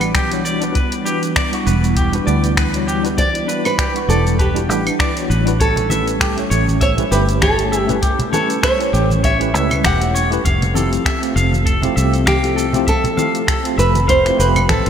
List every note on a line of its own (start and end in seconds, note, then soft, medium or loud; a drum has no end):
0.00 0.15 A1 medium
0.00 5.56 E3 medium
0.00 0.26 G3 medium
0.00 10.41 G3 medium
0.00 5.56 B3 medium
0.00 0.27 D4 medium
0.00 5.56 D4 medium
0.00 0.27 E4 medium
0.00 0.42 G4 medium
0.00 0.28 B4 medium
0.00 0.28 F#5 medium
0.00 0.71 F#5 medium
0.00 closed hi-hat soft
0.00 claves medium
0.00 shaker soft
0.15 1.27 B1 medium
0.15 0.30 G4 loud
0.15 finger snap loud
0.15 kick loud
0.15 closed hi-hat medium
0.15 shaker soft
0.30 0.57 G3 medium
0.30 0.57 D4 medium
0.30 0.58 E4 medium
0.30 0.58 F#4 medium
0.30 0.59 C#5 medium
0.30 closed hi-hat soft
0.30 shaker soft
0.45 0.60 D5 medium
0.45 shaker medium
0.60 0.75 G3 medium
0.60 0.75 D4 medium
0.60 0.76 E4 medium
0.60 0.76 F#4 medium
0.60 0.76 B4 medium
0.60 closed hi-hat soft
0.60 shaker soft
0.75 5.56 E4 medium
0.75 0.91 B4 medium
0.75 kick loud
0.75 closed hi-hat medium
0.75 shaker soft
0.92 closed hi-hat soft
0.92 shaker soft
1.04 1.30 G3 medium
1.04 1.31 D4 medium
1.04 1.31 E4 medium
1.04 1.31 F#4 medium
1.04 1.21 G4 loud
1.04 1.32 B4 medium
1.04 shaker medium
1.23 closed hi-hat soft
1.23 shaker soft
1.36 1.51 D5 loud
1.36 finger snap loud
1.36 kick loud
1.36 closed hi-hat medium
1.36 shaker medium
1.51 2.09 G3 medium
1.51 2.09 D4 medium
1.51 2.09 E4 medium
1.51 2.10 F#5 medium
1.51 2.10 C#6 medium
1.51 closed hi-hat soft
1.51 shaker soft
1.67 2.19 E1 medium
1.67 1.82 B4 medium
1.67 shaker medium
1.84 shaker soft
1.97 2.12 G4 loud
1.97 kick loud
1.97 closed hi-hat medium
1.97 shaker soft
2.12 2.24 G3 medium
2.12 2.24 D4 medium
2.12 2.24 E4 medium
2.12 2.25 F#4 medium
2.12 2.25 B4 loud
2.12 closed hi-hat soft
2.12 shaker soft
2.26 3.40 D2 medium
2.26 2.69 G3 medium
2.26 2.70 D4 medium
2.26 2.70 E4 medium
2.26 2.71 B4 medium
2.26 2.42 D5 loud
2.26 2.70 F#5 medium
2.26 shaker medium
2.44 closed hi-hat soft
2.44 shaker soft
2.57 2.73 B4 medium
2.57 finger snap loud
2.57 kick loud
2.57 closed hi-hat medium
2.57 shaker soft
2.72 2.99 G3 medium
2.72 3.00 D4 medium
2.72 3.00 E4 medium
2.72 3.01 F#4 medium
2.72 3.01 C#5 medium
2.72 closed hi-hat soft
2.72 shaker soft
2.88 3.03 G4 loud
2.88 shaker medium
3.03 3.17 G3 medium
3.03 3.18 D4 medium
3.03 3.18 E4 medium
3.03 3.18 F#4 medium
3.03 3.19 B4 loud
3.03 closed hi-hat soft
3.03 shaker soft
3.18 3.33 D5 loud
3.18 3.66 D5 loud
3.18 kick loud
3.18 closed hi-hat medium
3.18 shaker soft
3.35 closed hi-hat soft
3.35 shaker soft
3.46 3.72 G3 medium
3.46 3.73 D4 medium
3.46 3.73 E4 medium
3.46 3.74 F#4 medium
3.46 3.64 B4 medium
3.46 3.74 B4 medium
3.46 shaker medium
3.65 4.09 B4 loud
3.65 closed hi-hat soft
3.65 claves medium
3.65 shaker soft
3.78 3.93 G4 loud
3.78 finger snap loud
3.78 kick loud
3.78 closed hi-hat medium
3.78 shaker soft
3.94 4.51 G3 medium
3.94 4.51 D4 medium
3.94 4.52 E4 medium
3.94 4.52 F#5 medium
3.94 4.53 C#6 medium
3.94 closed hi-hat soft
3.94 shaker soft
4.08 4.69 E1 loud
4.08 4.37 A4 medium
4.08 4.24 D5 medium
4.08 shaker medium
4.27 shaker soft
4.39 5.27 G4 medium
4.39 4.55 B4 medium
4.39 kick loud
4.39 closed hi-hat medium
4.39 shaker soft
4.54 4.66 G3 medium
4.54 4.66 D4 medium
4.54 4.66 E4 medium
4.54 4.67 F#4 medium
4.54 4.67 B4 loud
4.54 closed hi-hat soft
4.54 shaker soft
4.68 4.89 A1 medium
4.68 5.12 G3 medium
4.68 5.12 D4 medium
4.68 5.12 E4 medium
4.68 4.84 G4 medium
4.68 5.13 B4 medium
4.68 5.13 F#5 medium
4.68 shaker medium
4.87 closed hi-hat soft
4.87 claves medium
4.87 shaker soft
4.99 5.15 D5 loud
4.99 finger snap medium
4.99 kick loud
4.99 closed hi-hat medium
4.99 shaker soft
5.15 5.42 G3 medium
5.15 5.42 D4 medium
5.15 5.43 E4 medium
5.15 5.43 F#4 medium
5.15 5.43 C#5 medium
5.15 closed hi-hat soft
5.15 shaker soft
5.30 6.43 A1 medium
5.30 5.46 B4 medium
5.30 shaker medium
5.45 5.58 G3 medium
5.45 5.58 D4 medium
5.45 5.58 E4 medium
5.45 5.59 F#4 medium
5.45 5.59 B4 loud
5.45 closed hi-hat soft
5.45 shaker soft
5.60 10.41 A3 medium
5.60 10.41 C#4 medium
5.60 6.78 A4 medium
5.60 5.75 C#5 medium
5.60 kick loud
5.60 closed hi-hat medium
5.60 shaker soft
5.76 closed hi-hat soft
5.76 low conga medium
5.76 shaker soft
5.89 6.15 A3 medium
5.89 6.16 C#4 medium
5.89 6.16 E4 medium
5.89 6.16 G4 medium
5.89 6.17 B4 medium
5.89 6.05 E5 loud
5.89 high conga medium
5.89 shaker medium
6.08 closed hi-hat soft
6.08 shaker soft
6.20 6.36 G4 medium
6.20 finger snap loud
6.20 kick loud
6.20 closed hi-hat medium
6.20 shaker soft
6.36 6.93 A3 medium
6.36 6.94 C#4 medium
6.36 6.94 E4 medium
6.36 6.94 G4 medium
6.36 6.95 C#5 medium
6.36 closed hi-hat soft
6.36 shaker soft
6.50 7.03 A1 loud
6.50 6.66 C#5 loud
6.50 shaker medium
6.67 high conga medium
6.67 shaker soft
6.81 6.90 C#5 loud
6.81 6.96 E5 loud
6.81 kick loud
6.81 closed hi-hat medium
6.81 shaker soft
6.97 7.08 A3 loud
6.97 7.09 C#4 medium
6.97 7.09 E4 medium
6.97 7.09 G4 medium
6.97 7.10 B4 medium
6.97 closed hi-hat soft
6.97 low conga medium
6.97 shaker soft
7.10 8.24 G1 medium
7.10 7.54 A3 medium
7.10 7.54 C#4 medium
7.10 7.55 E4 medium
7.10 7.27 G4 loud
7.10 7.55 G4 medium
7.10 7.20 B4 medium
7.10 7.56 B4 medium
7.10 shaker medium
7.29 closed hi-hat soft
7.29 shaker soft
7.42 7.86 A4 medium
7.42 7.57 C#5 loud
7.42 finger snap medium
7.42 kick loud
7.42 closed hi-hat medium
7.42 high conga medium
7.42 shaker soft
7.57 7.84 A3 medium
7.57 7.85 C#4 medium
7.57 7.85 E4 medium
7.57 7.85 G4 medium
7.57 7.86 C#5 medium
7.57 closed hi-hat soft
7.57 shaker soft
7.72 7.87 E5 medium
7.72 shaker medium
7.87 8.02 A3 medium
7.87 8.02 C#4 medium
7.87 8.03 E4 medium
7.87 8.03 G4 medium
7.87 8.03 B4 medium
7.87 closed hi-hat soft
7.87 low conga medium
7.87 shaker soft
8.02 8.18 G4 loud
8.02 kick loud
8.02 closed hi-hat medium
8.02 shaker soft
8.19 closed hi-hat soft
8.19 low conga medium
8.19 shaker soft
8.31 8.57 A3 medium
8.31 8.58 C#4 medium
8.31 8.58 E4 medium
8.31 8.58 G4 medium
8.31 8.62 A4 medium
8.31 8.59 B4 medium
8.31 8.48 C#5 loud
8.31 high conga medium
8.31 shaker medium
8.50 closed hi-hat soft
8.50 shaker soft
8.63 9.20 C#5 loud
8.63 8.78 E5 loud
8.63 finger snap loud
8.63 kick loud
8.63 closed hi-hat medium
8.63 shaker soft
8.78 9.36 A3 medium
8.78 9.36 C#4 medium
8.78 9.36 E4 medium
8.78 9.37 G4 medium
8.78 9.37 C#5 medium
8.78 closed hi-hat soft
8.78 shaker soft
8.93 9.54 A1 loud
8.93 9.08 G4 loud
8.93 shaker medium
9.10 high conga medium
9.10 shaker soft
9.24 9.39 C#5 loud
9.24 9.81 E5 loud
9.24 kick loud
9.24 closed hi-hat medium
9.24 shaker soft
9.39 9.50 A3 medium
9.39 9.51 C#4 medium
9.39 9.51 E4 medium
9.39 9.52 G4 medium
9.39 9.52 B4 loud
9.39 closed hi-hat soft
9.39 shaker soft
9.52 9.86 C#2 medium
9.52 9.96 A3 medium
9.52 9.97 C#4 medium
9.52 9.97 E4 medium
9.52 9.98 G4 medium
9.52 9.98 B4 medium
9.52 9.69 E5 medium
9.52 shaker medium
9.70 closed hi-hat soft
9.70 low conga medium
9.70 claves medium
9.70 shaker soft
9.84 10.37 E1 medium
9.84 9.99 G4 loud
9.84 10.29 F#5 loud
9.84 finger snap medium
9.84 kick loud
9.84 closed hi-hat medium
9.84 high conga medium
9.84 shaker soft
10.00 10.27 A3 medium
10.00 10.27 C#4 medium
10.00 10.28 E4 medium
10.00 10.28 G4 medium
10.00 10.28 C#5 medium
10.00 closed hi-hat soft
10.00 shaker soft
10.15 10.30 C#5 loud
10.15 shaker medium
10.30 10.43 A3 medium
10.30 10.43 C#4 medium
10.30 10.43 E4 medium
10.30 10.44 G4 medium
10.30 10.44 B4 loud
10.30 closed hi-hat soft
10.30 shaker soft
10.45 10.97 F1 loud
10.45 14.90 F3 medium
10.45 14.90 C4 medium
10.45 14.90 G4 medium
10.45 14.90 A4 medium
10.45 10.60 F5 loud
10.45 kick loud
10.45 closed hi-hat medium
10.45 shaker soft
10.62 closed hi-hat soft
10.62 low conga medium
10.62 shaker soft
10.74 11.00 A3 medium
10.74 11.00 C4 medium
10.74 11.01 E4 medium
10.74 11.01 F4 medium
10.74 11.01 G4 medium
10.74 10.90 A4 loud
10.74 high conga medium
10.74 shaker medium
10.93 closed hi-hat soft
10.93 shaker soft
11.05 11.21 E5 loud
11.05 finger snap loud
11.05 kick loud
11.05 closed hi-hat medium
11.05 shaker soft
11.21 11.78 A3 medium
11.21 11.79 C4 medium
11.21 11.79 F4 medium
11.21 11.80 A4 medium
11.21 closed hi-hat soft
11.21 shaker soft
11.36 11.88 F1 loud
11.36 11.51 F5 loud
11.36 shaker medium
11.53 high conga medium
11.53 shaker soft
11.66 11.81 A4 loud
11.66 kick loud
11.66 closed hi-hat medium
11.66 shaker soft
11.81 11.93 A3 medium
11.81 11.93 C4 medium
11.81 11.94 E4 medium
11.81 11.94 F4 medium
11.81 11.95 G4 loud
11.81 closed hi-hat soft
11.81 low conga medium
11.81 shaker soft
11.95 13.09 C2 medium
11.95 12.39 A3 medium
11.95 12.39 C4 medium
11.95 12.40 F4 medium
11.95 12.40 G4 medium
11.95 12.11 E5 loud
11.95 shaker medium
12.14 closed hi-hat soft
12.14 shaker soft
12.26 12.88 G4 medium
12.26 12.42 F5 loud
12.26 finger snap loud
12.26 kick loud
12.26 closed hi-hat medium
12.26 high conga medium
12.26 shaker soft
12.42 12.69 A3 medium
12.42 12.69 C4 medium
12.42 12.70 E4 medium
12.42 12.70 F4 medium
12.42 12.71 A4 medium
12.42 closed hi-hat soft
12.42 shaker soft
12.56 12.72 A4 loud
12.56 shaker medium
12.72 12.87 A3 medium
12.72 12.87 C4 medium
12.72 12.88 E4 medium
12.72 12.88 F4 medium
12.72 12.89 G4 loud
12.72 closed hi-hat soft
12.72 low conga medium
12.72 shaker soft
12.87 13.75 A4 loud
12.87 13.02 E5 loud
12.87 kick loud
12.87 closed hi-hat medium
12.87 shaker soft
13.04 closed hi-hat soft
13.04 low conga medium
13.04 shaker soft
13.16 13.42 A3 medium
13.16 13.43 C4 medium
13.16 13.43 E4 medium
13.16 13.43 F4 medium
13.16 13.44 G4 medium
13.16 13.33 F5 loud
13.16 high conga loud
13.16 shaker medium
13.35 closed hi-hat soft
13.35 shaker soft
13.47 13.63 A4 loud
13.47 finger snap loud
13.47 kick loud
13.47 closed hi-hat medium
13.47 shaker soft
13.63 14.21 A3 medium
13.63 14.21 C4 medium
13.63 14.22 F4 medium
13.63 14.22 A4 medium
13.63 closed hi-hat soft
13.63 shaker soft
13.78 14.30 F1 loud
13.78 14.09 B4 loud
13.78 13.93 E5 loud
13.78 shaker medium
13.95 closed hi-hat soft
13.95 high conga medium
13.95 shaker soft
14.08 14.39 C5 loud
14.08 14.23 F5 loud
14.08 kick loud
14.08 closed hi-hat medium
14.08 shaker soft
14.24 14.35 A3 medium
14.24 14.36 C4 medium
14.24 14.36 E4 medium
14.24 14.36 F4 medium
14.24 14.37 G4 loud
14.24 finger snap soft
14.24 closed hi-hat soft
14.24 shaker soft
14.37 14.69 F1 medium
14.37 14.81 A3 medium
14.37 14.81 C4 medium
14.37 14.82 F4 medium
14.37 14.83 G4 medium
14.37 14.68 B4 loud
14.37 14.48 C5 medium
14.37 shaker medium
14.56 closed hi-hat soft
14.56 low conga medium
14.56 claves medium
14.56 shaker soft
14.69 14.80 A1 medium
14.69 14.90 A4 medium
14.69 14.84 E5 medium
14.69 finger snap loud
14.69 kick loud
14.69 closed hi-hat medium
14.69 high conga medium
14.69 shaker soft
14.85 14.90 A1 loud
14.85 14.90 A3 medium
14.85 14.90 C4 medium
14.85 14.90 E4 medium
14.85 14.90 F4 medium
14.85 closed hi-hat soft